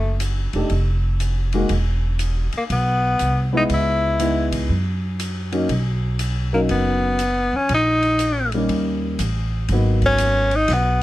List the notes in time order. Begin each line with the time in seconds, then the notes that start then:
Already playing: F#1 A3
0.20 hi-hat pedal, ride
0.53 E1 A3 D4 D#4 G4, ride
0.70 F1, kick, ride
1.20 hi-hat pedal, ride
1.53 G#3 A#3 D#4 F#4, ride
1.69 E1, kick, ride
2.19 hi-hat pedal, ride
2.52 muted upright bass stroke, ride
2.57 A#3
2.70 B1 B3, kick, ride
3.19 C2, hi-hat pedal, ride
3.53 G#3 B3 E4 D#5
3.57 D#4
3.69 C#2, kick, ride
3.74 E4
4.20 G#3 B3 D#4 E4, hi-hat pedal, ride
4.52 kick, ride
4.69 F#2, kick
5.20 hi-hat pedal, ride
5.52 F#3 A#3 C#4 D#4, ride
5.69 B1, kick, ride
6.19 hi-hat pedal, ride
6.53 F#3 A#3 C#4 D#4 A#4
6.69 F#1 B3, kick, ride
7.19 hi-hat pedal, ride
7.53 F2 C#4
7.69 A#1, kick, ride
7.74 D#4
8.03 ride
8.19 hi-hat pedal, ride
8.52 G3 A#3 C#4 D#4, ride
8.69 D#2, kick, ride
9.19 A1, hi-hat pedal, ride
9.68 G#1 F#3 A#3 B3, kick, ride
9.73 D#4
10.02 kick, ride
10.06 C#4
10.18 hi-hat pedal, ride
10.51 ride
10.56 D#4
10.68 B1, kick, snare, ride
10.73 B3